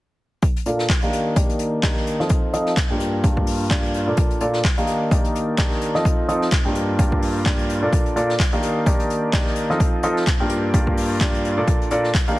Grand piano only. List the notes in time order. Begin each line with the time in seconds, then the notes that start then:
0.66 A#2 A#3 D4 F4 A4 D5
1.03 D#3 A#3 D4 D#4 G4 F5
1.36 D#3 A#3 D4 D#4 G4 D5
1.83 D#3 A#3 G4
2.20 F3 C4 D#4 F4 A4 D#5
2.53 F3 C4 D#4 F4 A4 D#5
2.90 G2 A#3 D4 F4 G4 G5
3.24 G2 A#3 D4 F4 G4 D5
3.71 G2 A#3 D4 F4 D5
4.07 A#2 A#3 D4 F4 A4 D5
4.41 A#2 A#3 D4 F4 A4 D5
4.78 D#3 A#3 D4 D#4 G4 F5
5.11 D#3 A#3 D4 D#4 G4 D5
5.58 D#3 A#3 D4 D#4 G4 D5
5.95 F3 C4 D#4 F4 A4 D#5
6.28 F3 C4 D#4 F4 A4 D#5
6.65 G2 A#3 D4 F4 G4 G5
6.99 G2 A#3 D4 F4 G4 D5
7.46 G2 A#3 D4 F4 G4 D5
7.82 A#2 A#3 D4 F4 A4 D5
8.16 A#2 A#3 D4 F4 A4 D5
8.53 D#3 A#3 D4 D#4 G4 F5
8.86 D#3 A#3 D4 D#4 G4 D5
9.33 D#3 A#3 D4 D#4 G4 D5
9.70 F3 C4 D#4 F4 A4 D#5
10.03 F3 C4 D#4 F4 A4 D#5
10.40 G2 A#3 D4 F4 G4 G5
10.74 G2 A#3 D4 F4 G4 D5
11.21 G2 A#3 D4 F4 G4 D5
11.57 A#2 A#3 D4 F4 A4 D5
11.91 A#2 A#3 D4 F4 A4 D5
12.28 D#3 A#3 D4 D#4 G4 F5